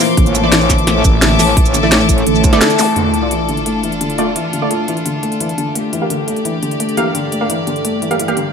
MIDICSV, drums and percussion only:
0, 0, Header, 1, 2, 480
1, 0, Start_track
1, 0, Key_signature, -1, "minor"
1, 0, Tempo, 348837
1, 237, Time_signature, 4, 2, 24, 8
1, 11736, End_track
2, 0, Start_track
2, 0, Title_t, "Drums"
2, 238, Note_on_c, 9, 36, 114
2, 239, Note_on_c, 9, 42, 96
2, 360, Note_off_c, 9, 42, 0
2, 360, Note_on_c, 9, 42, 37
2, 360, Note_on_c, 9, 82, 29
2, 376, Note_off_c, 9, 36, 0
2, 479, Note_off_c, 9, 42, 0
2, 479, Note_off_c, 9, 82, 0
2, 479, Note_on_c, 9, 42, 71
2, 479, Note_on_c, 9, 82, 66
2, 616, Note_off_c, 9, 42, 0
2, 616, Note_off_c, 9, 82, 0
2, 719, Note_on_c, 9, 38, 116
2, 719, Note_on_c, 9, 42, 97
2, 839, Note_on_c, 9, 82, 30
2, 856, Note_off_c, 9, 38, 0
2, 856, Note_off_c, 9, 42, 0
2, 958, Note_on_c, 9, 36, 60
2, 959, Note_off_c, 9, 82, 0
2, 959, Note_on_c, 9, 40, 35
2, 959, Note_on_c, 9, 42, 73
2, 959, Note_on_c, 9, 82, 64
2, 1080, Note_off_c, 9, 42, 0
2, 1080, Note_on_c, 9, 42, 39
2, 1096, Note_off_c, 9, 36, 0
2, 1097, Note_off_c, 9, 40, 0
2, 1097, Note_off_c, 9, 82, 0
2, 1199, Note_off_c, 9, 42, 0
2, 1199, Note_on_c, 9, 40, 53
2, 1199, Note_on_c, 9, 42, 95
2, 1337, Note_off_c, 9, 40, 0
2, 1337, Note_off_c, 9, 42, 0
2, 1438, Note_on_c, 9, 36, 103
2, 1438, Note_on_c, 9, 42, 69
2, 1438, Note_on_c, 9, 82, 63
2, 1576, Note_off_c, 9, 36, 0
2, 1576, Note_off_c, 9, 42, 0
2, 1576, Note_off_c, 9, 82, 0
2, 1678, Note_on_c, 9, 38, 116
2, 1678, Note_on_c, 9, 42, 103
2, 1816, Note_off_c, 9, 38, 0
2, 1816, Note_off_c, 9, 42, 0
2, 1918, Note_on_c, 9, 40, 36
2, 1918, Note_on_c, 9, 46, 82
2, 1918, Note_on_c, 9, 82, 63
2, 2056, Note_off_c, 9, 40, 0
2, 2056, Note_off_c, 9, 46, 0
2, 2056, Note_off_c, 9, 82, 0
2, 2158, Note_on_c, 9, 36, 119
2, 2158, Note_on_c, 9, 42, 99
2, 2278, Note_off_c, 9, 42, 0
2, 2278, Note_on_c, 9, 42, 41
2, 2278, Note_on_c, 9, 82, 29
2, 2295, Note_off_c, 9, 36, 0
2, 2398, Note_off_c, 9, 42, 0
2, 2398, Note_off_c, 9, 82, 0
2, 2398, Note_on_c, 9, 42, 74
2, 2398, Note_on_c, 9, 82, 67
2, 2535, Note_off_c, 9, 42, 0
2, 2535, Note_off_c, 9, 82, 0
2, 2637, Note_on_c, 9, 38, 125
2, 2637, Note_on_c, 9, 42, 103
2, 2757, Note_on_c, 9, 82, 30
2, 2775, Note_off_c, 9, 38, 0
2, 2775, Note_off_c, 9, 42, 0
2, 2877, Note_off_c, 9, 82, 0
2, 2877, Note_on_c, 9, 36, 62
2, 2877, Note_on_c, 9, 42, 71
2, 2877, Note_on_c, 9, 82, 65
2, 2997, Note_off_c, 9, 42, 0
2, 2997, Note_on_c, 9, 42, 37
2, 3015, Note_off_c, 9, 36, 0
2, 3015, Note_off_c, 9, 82, 0
2, 3118, Note_off_c, 9, 42, 0
2, 3118, Note_on_c, 9, 42, 101
2, 3238, Note_on_c, 9, 82, 28
2, 3255, Note_off_c, 9, 42, 0
2, 3357, Note_off_c, 9, 82, 0
2, 3357, Note_on_c, 9, 36, 99
2, 3357, Note_on_c, 9, 42, 73
2, 3357, Note_on_c, 9, 82, 63
2, 3477, Note_off_c, 9, 42, 0
2, 3477, Note_on_c, 9, 40, 34
2, 3477, Note_on_c, 9, 42, 41
2, 3494, Note_off_c, 9, 82, 0
2, 3495, Note_off_c, 9, 36, 0
2, 3596, Note_off_c, 9, 42, 0
2, 3596, Note_on_c, 9, 38, 118
2, 3596, Note_on_c, 9, 42, 107
2, 3615, Note_off_c, 9, 40, 0
2, 3716, Note_off_c, 9, 42, 0
2, 3716, Note_on_c, 9, 42, 41
2, 3716, Note_on_c, 9, 82, 30
2, 3734, Note_off_c, 9, 38, 0
2, 3836, Note_off_c, 9, 82, 0
2, 3836, Note_on_c, 9, 38, 38
2, 3836, Note_on_c, 9, 46, 83
2, 3836, Note_on_c, 9, 82, 64
2, 3853, Note_off_c, 9, 42, 0
2, 3973, Note_off_c, 9, 38, 0
2, 3973, Note_off_c, 9, 46, 0
2, 3973, Note_off_c, 9, 82, 0
2, 4076, Note_on_c, 9, 42, 83
2, 4213, Note_off_c, 9, 42, 0
2, 4316, Note_on_c, 9, 42, 68
2, 4454, Note_off_c, 9, 42, 0
2, 4556, Note_on_c, 9, 42, 91
2, 4693, Note_off_c, 9, 42, 0
2, 4797, Note_on_c, 9, 42, 65
2, 4916, Note_off_c, 9, 42, 0
2, 4916, Note_on_c, 9, 42, 34
2, 5037, Note_off_c, 9, 42, 0
2, 5037, Note_on_c, 9, 42, 88
2, 5174, Note_off_c, 9, 42, 0
2, 5277, Note_on_c, 9, 42, 64
2, 5397, Note_off_c, 9, 42, 0
2, 5397, Note_on_c, 9, 42, 38
2, 5516, Note_off_c, 9, 42, 0
2, 5516, Note_on_c, 9, 42, 96
2, 5637, Note_off_c, 9, 42, 0
2, 5637, Note_on_c, 9, 42, 35
2, 5756, Note_off_c, 9, 42, 0
2, 5756, Note_on_c, 9, 42, 68
2, 5893, Note_off_c, 9, 42, 0
2, 5997, Note_on_c, 9, 42, 90
2, 6134, Note_off_c, 9, 42, 0
2, 6236, Note_on_c, 9, 42, 65
2, 6374, Note_off_c, 9, 42, 0
2, 6476, Note_on_c, 9, 42, 85
2, 6614, Note_off_c, 9, 42, 0
2, 6717, Note_on_c, 9, 42, 67
2, 6837, Note_off_c, 9, 42, 0
2, 6837, Note_on_c, 9, 42, 32
2, 6957, Note_off_c, 9, 42, 0
2, 6957, Note_on_c, 9, 42, 88
2, 7095, Note_off_c, 9, 42, 0
2, 7197, Note_on_c, 9, 42, 65
2, 7318, Note_off_c, 9, 42, 0
2, 7318, Note_on_c, 9, 42, 36
2, 7437, Note_off_c, 9, 42, 0
2, 7437, Note_on_c, 9, 42, 91
2, 7558, Note_off_c, 9, 42, 0
2, 7558, Note_on_c, 9, 42, 36
2, 7678, Note_off_c, 9, 42, 0
2, 7678, Note_on_c, 9, 42, 64
2, 7816, Note_off_c, 9, 42, 0
2, 7918, Note_on_c, 9, 42, 84
2, 8056, Note_off_c, 9, 42, 0
2, 8158, Note_on_c, 9, 42, 65
2, 8296, Note_off_c, 9, 42, 0
2, 8397, Note_on_c, 9, 42, 82
2, 8535, Note_off_c, 9, 42, 0
2, 8638, Note_on_c, 9, 42, 63
2, 8758, Note_off_c, 9, 42, 0
2, 8758, Note_on_c, 9, 42, 33
2, 8878, Note_off_c, 9, 42, 0
2, 8878, Note_on_c, 9, 42, 84
2, 9015, Note_off_c, 9, 42, 0
2, 9117, Note_on_c, 9, 42, 63
2, 9238, Note_off_c, 9, 42, 0
2, 9238, Note_on_c, 9, 42, 36
2, 9357, Note_off_c, 9, 42, 0
2, 9357, Note_on_c, 9, 42, 92
2, 9477, Note_off_c, 9, 42, 0
2, 9477, Note_on_c, 9, 42, 34
2, 9596, Note_off_c, 9, 42, 0
2, 9596, Note_on_c, 9, 42, 64
2, 9733, Note_off_c, 9, 42, 0
2, 9836, Note_on_c, 9, 42, 82
2, 9973, Note_off_c, 9, 42, 0
2, 10075, Note_on_c, 9, 42, 64
2, 10213, Note_off_c, 9, 42, 0
2, 10316, Note_on_c, 9, 42, 84
2, 10453, Note_off_c, 9, 42, 0
2, 10556, Note_on_c, 9, 42, 60
2, 10677, Note_off_c, 9, 42, 0
2, 10677, Note_on_c, 9, 42, 31
2, 10797, Note_off_c, 9, 42, 0
2, 10797, Note_on_c, 9, 42, 85
2, 10935, Note_off_c, 9, 42, 0
2, 11037, Note_on_c, 9, 42, 61
2, 11157, Note_off_c, 9, 42, 0
2, 11157, Note_on_c, 9, 42, 35
2, 11276, Note_off_c, 9, 42, 0
2, 11276, Note_on_c, 9, 42, 90
2, 11396, Note_off_c, 9, 42, 0
2, 11396, Note_on_c, 9, 42, 33
2, 11515, Note_off_c, 9, 42, 0
2, 11515, Note_on_c, 9, 42, 61
2, 11653, Note_off_c, 9, 42, 0
2, 11736, End_track
0, 0, End_of_file